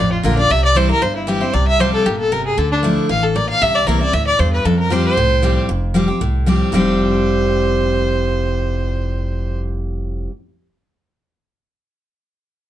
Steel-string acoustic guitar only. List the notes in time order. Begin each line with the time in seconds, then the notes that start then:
0.00 F2
0.23 D3 A#3 D4 F4
0.37 D4 F4
0.50 C3
0.75 E3 G3 C4 E4
0.89 C4 E4
1.02 G2
1.27 E3 G3 C4 E4
1.41 C4 E4
1.54 C3
1.79 F3 G3 C4 G4
2.06 A#2
2.32 C3
2.58 D3
2.83 F3 A3 D4 E4
3.09 E3
3.36 A#2
3.62 C3
3.87 E3 A#3 C4 E4
4.01 C4 E4
4.13 A2
4.39 G2
4.65 F2
4.90 F3 G3 C4 G4
5.17 A2
5.42 F3 G3 C4 G4
5.69 F2
5.94 F3 G3 C4 G4
6.08 C4 G4
6.21 A2
6.46 F3 G3 C4 G4
6.72 F2 A2 F3 G3 C4 G4